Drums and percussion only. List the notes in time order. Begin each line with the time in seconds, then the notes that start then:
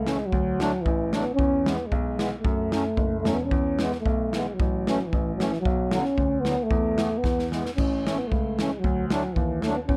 0.07 snare
0.32 kick
0.60 snare
0.86 kick
1.13 snare
1.39 kick
1.66 snare
1.92 kick
2.19 snare
2.45 kick
2.72 snare
2.97 kick
3.25 snare
3.51 kick
3.79 snare
3.92 snare
4.06 kick
4.33 snare
4.60 kick
4.87 snare
5.13 kick
5.40 snare
5.53 snare
5.65 kick
5.91 snare
6.05 snare
6.18 kick
6.45 snare
6.71 kick
6.98 snare
7.24 kick, snare
7.39 snare
7.52 snare
7.66 snare
7.78 kick, crash
8.07 snare
8.32 kick
8.59 snare
8.84 kick
9.10 snare
9.36 kick
9.62 snare
9.89 kick